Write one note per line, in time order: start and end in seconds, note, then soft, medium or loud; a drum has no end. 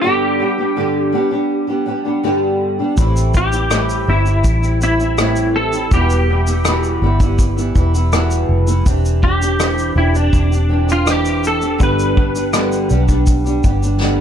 0.01 0.40 G2 medium
0.01 0.40 D3 medium
0.01 0.38 G3 medium
0.01 0.39 B3 medium
0.01 0.40 D4 medium
0.01 2.56 G4 medium
0.01 0.41 G4 medium
0.40 0.58 G3 soft
0.40 0.58 B3 medium
0.40 0.57 D4 medium
0.40 0.57 G4 medium
0.58 0.76 G3 soft
0.58 0.76 B3 soft
0.58 0.77 D4 soft
0.58 0.77 G4 soft
0.76 1.13 G2 medium
0.76 1.14 D3 medium
0.76 1.11 G3 medium
0.76 1.12 B3 medium
0.76 1.13 D4 medium
0.76 1.14 G4 medium
1.12 1.31 G3 medium
1.12 1.32 B3 medium
1.12 1.31 D4 medium
1.12 1.30 G4 medium
1.31 1.69 G3 soft
1.31 1.68 B3 soft
1.31 1.67 D4 soft
1.31 1.66 G4 medium
1.67 1.85 G3 soft
1.67 1.85 B3 soft
1.67 1.86 D4 medium
1.67 1.86 G4 soft
1.86 2.05 G3 medium
1.86 2.05 B3 medium
1.86 2.04 D4 medium
1.86 2.04 G4 medium
2.05 2.23 G3 soft
2.05 2.23 B3 soft
2.05 2.23 D4 soft
2.05 2.24 G4 soft
2.23 2.79 G2 medium
2.23 2.79 D3 medium
2.23 2.79 G3 medium
2.23 2.79 B3 medium
2.23 2.79 D4 medium
2.23 2.78 G4 medium
2.79 2.97 G3 soft
2.79 2.98 B3 soft
2.79 2.98 D4 medium
2.79 2.97 G4 soft
2.97 4.04 A1 medium
2.97 3.34 A2 medium
2.97 3.33 E3 medium
2.97 3.34 G3 medium
2.97 3.35 C4 medium
2.97 3.35 E4 medium
2.97 kick loud
2.97 shaker medium
3.16 shaker medium
3.34 3.52 E3 medium
3.34 3.53 G3 soft
3.34 3.52 C4 soft
3.34 3.51 E4 medium
3.34 4.11 G4 medium
3.34 kick medium
3.34 shaker soft
3.52 3.70 G3 soft
3.52 3.71 C4 soft
3.52 3.71 E4 soft
3.52 shaker medium
3.70 4.07 A2 medium
3.70 4.06 E3 medium
3.70 4.07 G3 medium
3.70 4.08 C4 medium
3.70 4.08 E4 medium
3.70 cross-stick loud
3.70 shaker medium
3.89 shaker soft
4.07 4.42 G1 medium
4.07 4.26 E3 medium
4.07 4.26 G3 soft
4.07 4.25 C4 medium
4.07 4.78 E4 medium
4.07 4.24 E4 medium
4.25 4.63 G3 soft
4.25 4.62 C4 medium
4.25 4.60 E4 soft
4.25 shaker soft
4.44 5.88 A1 medium
4.44 kick medium
4.44 shaker medium
4.62 4.80 G3 soft
4.62 4.81 C4 soft
4.62 4.81 E4 soft
4.62 shaker soft
4.80 4.99 E3 medium
4.80 5.00 G3 medium
4.80 4.99 C4 medium
4.80 4.98 E4 medium
4.80 5.58 E4 medium
4.80 shaker soft
4.99 5.18 G3 soft
4.99 5.18 C4 soft
4.99 5.18 E4 soft
4.99 shaker soft
5.18 5.73 A2 medium
5.18 5.73 E3 medium
5.18 5.74 G3 medium
5.18 5.73 C4 medium
5.18 5.72 E4 medium
5.18 cross-stick loud
5.18 shaker medium
5.36 shaker soft
5.56 5.93 A4 medium
5.73 5.92 G3 soft
5.73 5.92 C4 soft
5.73 5.92 E4 medium
5.73 shaker soft
5.91 6.98 E1 medium
5.91 6.28 E2 medium
5.91 6.29 B2 medium
5.91 6.27 E3 medium
5.91 6.28 G3 medium
5.91 6.29 B3 medium
5.91 6.29 E4 medium
5.91 8.46 G4 medium
5.91 kick loud
5.91 shaker medium
6.10 shaker soft
6.28 6.47 E3 soft
6.28 6.47 G3 medium
6.28 6.47 B3 medium
6.28 6.46 E4 medium
6.47 6.65 E3 soft
6.47 6.65 G3 soft
6.47 6.66 B3 soft
6.47 6.65 E4 soft
6.47 shaker medium
6.65 7.02 E2 medium
6.65 7.02 B2 medium
6.65 7.01 E3 medium
6.65 7.01 G3 medium
6.65 7.02 B3 medium
6.65 7.03 E4 medium
6.65 cross-stick medium
6.65 shaker medium
6.84 shaker soft
7.02 7.71 G1 medium
7.02 7.20 E3 medium
7.02 7.21 G3 medium
7.02 7.20 B3 medium
7.02 7.19 E4 medium
7.20 7.58 E3 soft
7.20 7.57 G3 medium
7.20 7.56 B3 medium
7.20 7.55 E4 medium
7.20 kick medium
7.20 shaker soft
7.39 kick medium
7.39 shaker medium
7.57 7.74 E3 soft
7.57 7.75 G3 medium
7.57 7.75 B3 medium
7.57 7.75 E4 medium
7.57 shaker soft
7.75 8.45 E1 medium
7.75 7.94 E3 medium
7.75 7.94 G3 medium
7.75 7.94 B3 medium
7.75 7.93 E4 medium
7.75 kick medium
7.75 shaker soft
7.94 8.12 E3 soft
7.94 8.12 G3 soft
7.94 8.12 B3 soft
7.94 8.12 E4 soft
7.94 shaker soft
8.12 8.68 E2 medium
8.12 8.68 B2 medium
8.12 8.68 E3 medium
8.12 8.68 G3 medium
8.12 8.67 B3 medium
8.12 8.66 E4 medium
8.12 cross-stick medium
8.12 shaker medium
8.31 shaker soft
8.49 8.83 F1 medium
8.67 8.85 E3 soft
8.67 8.86 G3 soft
8.67 8.86 B3 medium
8.67 8.86 E4 medium
8.67 shaker soft
8.86 9.93 E1 medium
8.86 9.21 E3 medium
8.86 9.22 C4 medium
8.86 9.22 D4 medium
8.86 9.23 G4 medium
8.86 kick loud
8.86 shaker medium
9.05 shaker medium
9.22 9.41 E3 soft
9.22 9.41 C4 medium
9.22 9.40 D4 medium
9.22 9.93 G4 medium
9.22 9.39 G4 medium
9.22 kick medium
9.41 9.58 C4 soft
9.41 9.59 D4 soft
9.41 9.59 G4 medium
9.41 shaker medium
9.59 9.94 E3 medium
9.59 9.95 C4 medium
9.59 9.96 D4 medium
9.59 9.96 G4 medium
9.59 cross-stick loud
9.59 shaker medium
9.78 shaker soft
9.95 10.30 E1 medium
9.95 10.14 E3 medium
9.95 10.14 C4 medium
9.95 10.14 D4 medium
9.95 10.16 E4 medium
9.95 10.12 G4 medium
10.13 10.52 C4 soft
10.13 10.51 D4 soft
10.13 10.91 D4 medium
10.13 10.49 G4 soft
10.13 shaker soft
10.33 11.80 E1 medium
10.33 kick medium
10.33 shaker medium
10.51 10.68 C4 soft
10.51 10.69 D4 soft
10.51 10.69 G4 soft
10.51 shaker soft
10.69 10.88 E3 soft
10.69 10.88 C4 medium
10.69 10.87 D4 medium
10.69 10.86 G4 medium
10.87 11.04 C4 soft
10.87 11.06 D4 soft
10.87 11.06 G4 soft
10.87 cross-stick soft
10.87 shaker soft
10.92 11.10 F4 medium
11.05 11.61 E3 medium
11.05 11.61 C4 medium
11.05 11.60 D4 medium
11.05 11.59 G4 medium
11.05 cross-stick medium
11.05 shaker medium
11.10 11.46 G4 medium
11.25 shaker soft
11.44 11.83 A4 medium
11.44 shaker medium
11.60 11.79 C4 soft
11.60 11.79 D4 soft
11.60 11.79 G4 soft
11.60 shaker soft
11.78 12.87 G1 medium
11.78 12.16 G2 medium
11.78 12.16 D3 medium
11.78 12.13 G3 medium
11.78 12.14 B3 medium
11.78 12.16 D4 medium
11.78 12.16 G4 medium
11.78 kick loud
11.78 shaker medium
11.83 13.98 B4 medium
11.99 shaker soft
12.14 12.34 G3 soft
12.14 12.35 B3 soft
12.14 12.34 D4 medium
12.14 12.33 G4 medium
12.14 kick medium
12.34 12.52 G3 soft
12.34 12.52 B3 soft
12.34 12.53 D4 medium
12.34 12.53 G4 soft
12.34 shaker medium
12.53 12.90 G2 medium
12.53 12.90 D3 medium
12.53 12.89 G3 medium
12.53 12.90 B3 medium
12.53 12.91 D4 medium
12.53 12.91 G4 medium
12.53 cross-stick loud
12.53 shaker medium
12.72 shaker soft
12.90 13.60 B1 medium
12.90 13.09 G3 medium
12.90 13.09 B3 medium
12.90 13.08 D4 medium
12.90 13.07 G4 medium
12.90 shaker medium
13.08 13.46 G3 soft
13.08 13.45 B3 soft
13.08 13.45 D4 medium
13.08 13.43 G4 medium
13.08 kick medium
13.08 shaker soft
13.27 kick medium
13.27 shaker medium
13.45 13.62 G3 soft
13.45 13.63 B3 soft
13.45 13.64 D4 soft
13.45 13.64 G4 medium
13.45 shaker soft
13.63 14.21 G1 medium
13.63 13.82 G3 medium
13.63 13.83 B3 medium
13.63 13.82 D4 medium
13.63 13.81 G4 medium
13.63 kick medium
13.63 shaker soft
13.82 14.00 G3 soft
13.82 14.00 B3 soft
13.82 14.00 D4 soft
13.82 14.01 G4 soft
13.82 shaker soft
14.00 14.21 G2 medium
14.00 14.21 D3 medium
14.00 14.21 G3 medium
14.00 14.21 B3 medium
14.00 14.21 D4 medium
14.00 14.21 G4 medium
14.00 snare soft